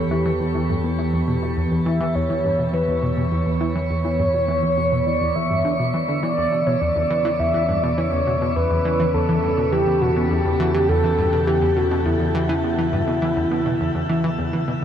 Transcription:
Already playing: E2 E3 B3 G4 A4
0.11 E3 G4
0.26 E3
0.40 E2
0.55 E3
0.69 G2
0.84 B2
0.99 E3
1.13 E2
1.28 B2
1.42 B2
1.57 E2
1.71 E2
1.86 E3 E5
2.00 E3
2.15 E2 C#5
2.30 E3
2.44 G2
2.59 B2
2.73 E3 B4
2.88 E2
3.02 B2
3.17 B2
3.32 E2
3.46 E2
3.61 E3 C#5
3.75 E3
3.90 E2
4.05 E3
4.19 G2
4.34 B2
4.48 E3
4.63 E2
4.77 B2
4.92 B2
5.07 E2 D5
5.21 E2
5.35 E2 E5
5.50 G2
5.65 D3
5.79 B2
5.94 E3
6.08 D3
6.23 E2 C#3 E3 D5
6.37 E2
6.52 B2
6.66 B2 C#5
6.81 E2 D5
6.96 E2
7.10 E3
7.25 E3
7.39 E2 E5
7.54 E3
7.69 G2
7.83 B2 D5
7.98 E3 C#5
8.12 E2
8.27 B2
8.41 B2
8.56 E2 B4
8.71 E2
8.85 E3
9.00 E3
9.14 E2 A4
9.29 E3
9.43 G2
9.58 B2
9.72 E3 G4
9.87 E2
10.01 B2 F#4
10.16 B2
10.30 E2 G4
10.45 E2
10.60 E3 F#4
10.74 E3 G4
10.89 E2 A4
11.04 E3
11.18 G2
11.33 B2
11.47 E3 G4
11.62 E2
11.76 B2 F#4
11.91 B2
12.05 E2 E4
12.20 E2
12.35 E3
12.49 E3
12.64 E2
12.78 E3
12.93 G2
13.07 B2
13.22 E3
13.37 E2
13.51 B2
13.66 B2
13.80 E2
13.95 E2
14.09 E3
14.24 E3
14.38 E2
14.53 E3
14.68 B2

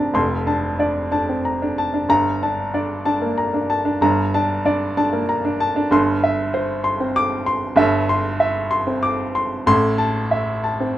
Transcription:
Already playing: F1 F2 C4 D5 A5 A#5 C6
0.00 D4
0.14 F1 F2 C6
0.47 D4 A5
0.79 D4 D5
1.12 D4 A5
1.29 C4
1.45 A#5
1.62 D4
1.78 A5
1.94 D4
2.09 G1 G2 A#5
2.43 D4 A5
2.74 D4 D5
3.05 D4 A5
3.21 A#3
3.38 A#5
3.54 D4
3.70 A5
3.85 D4
4.01 G1 G2 A#5
4.34 D4 A5
4.65 D4 D5
4.97 D4 A5
5.13 A#3
5.29 A#5
5.45 D4
5.60 A5
5.76 D4
5.91 G1 G2 C6
6.24 E5
6.54 C5
6.84 C6
7.00 C4
7.16 D6
7.46 C6
7.76 G1 G2 E5
8.09 C6
8.40 E5
8.71 C6
8.87 C4
9.03 D6
9.35 C6
9.66 A1 A2 C6
9.98 A5
10.31 E5
10.64 A5
10.80 C4

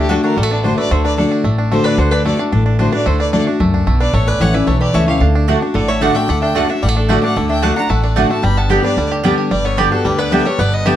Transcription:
Already playing: D2 A3 D4 G4
0.09 D3 A3 D4 F#4 A4
0.23 D4 F#4 A#4
0.36 A1 A2 G3 F#4 A4
0.43 A3
0.50 B3 D4
0.64 D3 A3 D4 F#4 C5
0.78 A3 D4 F#4 B4 D5
0.91 D2 D3 A3 F#4 C5
1.05 D4 B4 D5
1.18 D3 A3 D4 F#4 A4 D5
1.32 D4
1.44 A1 A2 A3
1.58 D4
1.72 D3 A3 D4 F#4 C5
1.84 D4 B4 D5
1.98 D2 D3 D4 F#4 C5
2.11 D4 B4 D5
2.24 D3 A3 D4 F#4 A4 D5
2.39 D4 F#4
2.52 A1 A2 D4
2.66 D4
2.79 D3 A3 D4 F#4 C5
2.92 D4 F#4 B4 D5
3.06 D2 D3 A3 F#4 C5
3.20 D4 B4 D5
3.33 D3 A3 D4 F#4 A4 D5
3.47 D4 F#4
3.60 C#2 F#2 A3
3.74 D4
3.87 B1 B2 A3
4.00 D4 B4 D5
4.13 A1 A2 A3 A4 C#5
4.27 C#4 B4 D5
4.40 A1 E3 A3 C#4 E4 G4 C#5 F#5
4.54 C#4 E4 B4 D5
4.67 B1 E2 A3 A4 C#5
4.81 G4 B4 D5
4.93 C#2 E3 A3 C#4 E4 C#5 E5
5.07 C#4 E4 G4 C#5 F5
5.20 D2 D3 D4
5.35 D4
5.48 D3 A3 D4 F#4 D5 F#5
5.61 D4 F#4
5.74 A1 A2 D3 A4 D5
5.88 A3 C#5 E5
6.01 D3 A3 D4 F#4 D5 F#5
6.15 A3 D4 F#4 E5 G5
6.28 D2 D3 A3 D5 F#5
6.42 D4 E5 G5
6.55 D3 A3 D4 F#4 D5 F#5
6.68 D4 F#4 C#5 E5
6.82 A1 A2 G3 D5 F#5
6.89 A3
6.96 D4 A4, muted resonator guitar played with a steel bar stroke
7.09 D3 A3 D4 F#4 A4 D5 F#5
7.22 D4 F#4 D5 F#5
7.36 D2 D3 A3 D5 F#5
7.49 D4 E5 G5
7.62 D3 A3 D4 F#4 D5 F#5 A5
7.76 D4 F#4 F#5 A#5
7.89 A1 A2 A3 F#5 A5
8.03 D4 D5, muted resonator guitar played with a steel bar stroke
8.16 D3 A3 D4 F#4 D5 F#5
8.29 A3 D4 F#4 F#5 A5
8.42 G1 G2 G3 G5 B5
8.57 B3 F#5 A5
8.69 D3 G3 B3 G4 D5 G5
8.82 B3 D4 G4 B4 D5
8.97 D2 D3 G3
9.12 G4
9.23 D3 G3 B3 G4 D5 G5
9.38 G4
9.51 G1 G2 G3 B4 D5
9.64 B3 A4 C#5
9.77 D3 G3 B3 G4 B4 D5 G5
9.91 B3 D4 F#4 G4 A4
10.05 D2 D3 G3 G4 B4
10.18 B3 B4 D5
10.31 D3 G3 B3 D4 G4 B4 D5 E5 G5
10.45 G3 B3 G4 A4 C#5
10.59 G1 G2 B3 B4 D5
10.72 B4 D#5
10.86 D3 G3 B3 G4 B4 D5 E5 G5

